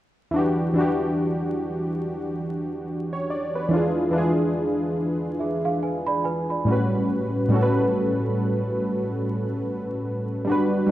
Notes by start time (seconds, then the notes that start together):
0.31 E3 D4
0.36 F#4 G4
0.74 E3 D4
0.78 F#4 G4
3.13 C#5
3.30 D5
3.55 B4
3.69 E3 D4
3.73 F4 G#4
4.11 E3 D4
4.16 F4 G#4
5.40 G#4 E5
5.65 G#4 F5
5.83 B4 G#5
6.07 D5 B5
6.24 B4 G#5
6.50 D5 B5
6.65 A2 G3 C#4
6.70 F#4 B4
7.49 A2 G3 C#4
7.54 F#4 A4
7.63 B4
10.45 G3 D4
10.50 F#4 B4
10.86 G3